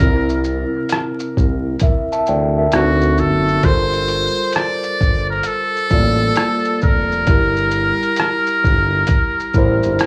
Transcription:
0.00 0.64 C2 loud
0.00 1.47 C3 medium
0.00 1.48 C4 medium
0.00 1.48 E4 medium
0.00 0.46 A#4 medium
0.00 1.49 A#4 medium
0.00 kick loud
0.00 closed hi-hat medium
0.00 shaker medium
0.29 shaker soft
0.44 shaker medium
0.89 cross-stick loud
0.89 closed hi-hat medium
0.89 shaker medium
1.20 shaker medium
1.37 1.76 C2 medium
1.37 kick medium
1.37 shaker soft
1.80 2.11 A#4 soft
1.80 2.10 E5 medium
1.80 kick loud
1.80 closed hi-hat medium
1.80 shaker medium
2.12 2.27 E5 medium
2.12 2.27 A5 medium
2.12 shaker soft
2.26 2.67 D2 loud
2.26 2.56 D5 medium
2.26 2.56 G5 medium
2.26 shaker soft
2.58 3.01 A#4 soft
2.58 3.01 E5 medium
2.72 3.21 D2 loud
2.72 3.51 D3 medium
2.72 3.51 C4 medium
2.72 3.52 D#4 medium
2.72 3.21 F#4 medium
2.72 3.52 F#4 medium
2.72 cross-stick loud
2.72 closed hi-hat medium
2.72 shaker medium
3.01 shaker soft
3.18 3.58 F#1 medium
3.18 3.66 A4 medium
3.18 shaker soft
3.48 shaker soft
3.63 4.28 G1 loud
3.63 5.11 G3 medium
3.63 5.11 F4 medium
3.63 5.12 A4 medium
3.63 5.12 A#4 medium
3.63 4.55 C5 loud
3.63 5.13 C5 medium
3.63 kick loud
3.63 closed hi-hat medium
3.63 shaker medium
3.93 shaker soft
4.08 shaker medium
4.53 5.26 D5 loud
4.53 cross-stick loud
4.53 closed hi-hat medium
4.53 shaker medium
4.83 shaker medium
5.01 5.40 G1 medium
5.01 kick medium
5.01 shaker soft
5.30 5.48 A#4 medium
5.43 6.82 A4 loud
5.43 closed hi-hat medium
5.43 shaker medium
5.76 shaker soft
5.90 6.30 A1 medium
5.90 7.05 G3 medium
5.90 7.06 A#3 medium
5.90 7.05 F4 medium
5.90 7.06 A4 medium
5.90 7.06 D5 medium
5.90 kick medium
5.90 shaker soft
6.36 cross-stick loud
6.36 closed hi-hat medium
6.36 shaker medium
6.65 shaker soft
6.81 7.29 F1 loud
6.81 10.06 A#4 medium
6.81 kick loud
6.81 shaker soft
7.12 shaker soft
7.27 7.92 G1 loud
7.27 8.75 G3 medium
7.27 8.75 E4 medium
7.27 8.76 G4 medium
7.27 8.76 A#4 medium
7.27 kick loud
7.27 closed hi-hat medium
7.27 shaker medium
7.56 shaker soft
7.71 shaker medium
8.03 shaker soft
8.16 cross-stick loud
8.16 closed hi-hat medium
8.16 shaker medium
8.47 shaker medium
8.64 9.03 G1 loud
8.64 kick medium
8.64 shaker soft
9.07 kick medium
9.07 closed hi-hat medium
9.07 shaker medium
9.40 shaker soft
9.54 9.80 A1 medium
9.54 10.06 G3 medium
9.54 10.06 E4 medium
9.54 10.06 A#4 medium
9.54 kick medium
9.54 shaker soft
9.58 10.06 C5 medium
9.83 9.98 G1 medium
9.83 shaker soft
9.99 cross-stick loud
9.99 closed hi-hat medium
9.99 shaker medium

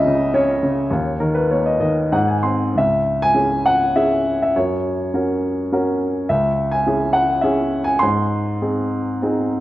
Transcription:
0.00 0.88 C#2 medium
0.00 0.06 C#3 medium
0.00 0.88 F4 soft
0.00 0.36 D#5 medium
0.00 0.93 E5 loud
0.06 0.61 C#3 medium
0.34 0.90 C#4 medium
0.34 1.49 C#5 medium
0.63 0.91 C#3 soft
0.91 2.09 D#2 medium
1.20 1.78 D#3 medium
1.20 1.34 A#4 medium
1.35 1.49 B4 medium
1.51 2.11 A#3 soft
1.51 1.65 C#5 medium
1.66 1.79 D#5 medium
1.80 2.11 D#3 soft
1.80 2.11 D#5 medium
2.12 2.74 G#2 medium
2.12 2.28 F#5 medium
2.28 2.43 G#5 soft
2.43 2.74 C4 soft
2.43 2.73 C6 soft
2.75 4.52 C#2 soft
2.75 3.24 E5 medium
3.22 3.68 G#5 loud
3.34 3.84 C#4 soft
3.34 3.84 E4 soft
3.34 3.84 G#4 soft
3.66 3.97 F#5 medium
3.95 4.44 C#4 soft
3.95 4.44 E4 soft
3.95 4.44 G#4 soft
3.95 4.41 E5 medium
4.42 4.57 E5 medium
4.56 6.26 F#2 medium
4.56 5.97 C#5 medium
5.14 5.60 C#4 soft
5.14 5.61 F#4 soft
5.14 5.61 A#4 soft
5.72 6.18 C#4 soft
5.72 6.19 F#4 soft
5.72 6.19 A#4 soft
6.29 7.98 C#2 medium
6.29 6.70 E5 medium
6.72 7.16 G#5 medium
6.87 7.33 C#4 soft
6.87 7.33 E4 soft
6.87 7.33 G#4 soft
7.13 7.44 F#5 medium
7.41 7.90 C#4 soft
7.41 7.91 E4 soft
7.41 7.91 G#4 soft
7.41 7.88 E5 medium
7.84 8.01 G#5 medium
7.99 9.60 G#2 medium
7.99 9.47 C6 medium
8.62 9.10 C4 soft
8.62 9.10 D#4 soft
8.62 9.10 G#4 soft
9.22 9.60 C4 soft
9.22 9.60 D#4 soft
9.22 9.60 G#4 soft

